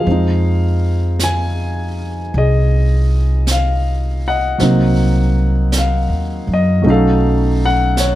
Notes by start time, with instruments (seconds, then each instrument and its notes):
Already playing: grand piano G#4 F5
0.00 grand piano F3
0.04 upright bass F2, grand piano G#3 C4, brush sweep
0.11 grand piano D#4
1.19 brush sweep, snare, hi-hat pedal
1.24 grand piano G#5
2.34 upright bass C2, grand piano G#4 D#5, brush sweep
3.47 brush sweep, snare, hi-hat pedal
3.52 grand piano F5
4.28 grand piano D#5 F#5
4.58 upright bass C2, grand piano F#3 A#3 C4, brush sweep, snare
4.63 grand piano D#4
5.72 brush sweep, snare, hi-hat pedal
5.78 grand piano F5
6.09 upright bass D#2
6.47 upright bass F#2
6.53 grand piano D#5
6.82 upright bass B1, grand piano F#3 A3 C#4, brush sweep
6.87 grand piano D#4 A4 F5
7.65 grand piano F#5
7.97 grand piano C#5, brush sweep, snare, hi-hat pedal